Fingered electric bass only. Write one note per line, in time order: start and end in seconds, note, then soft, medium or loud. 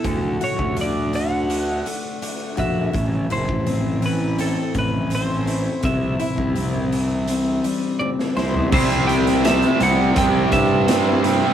0.05 0.35 D2 medium
0.59 1.81 D2 medium
2.58 2.89 A#1 medium
2.94 3.25 A1 medium
3.32 3.46 F#1 medium
3.49 4.55 A1 medium
4.75 5.66 A1 medium
5.83 6.14 C2 medium
6.38 7.59 C2 medium
8.38 8.67 C2 medium
8.72 9.63 C2 loud
9.81 10.11 C2 medium
10.17 10.47 C2 loud
10.52 11.42 G2 loud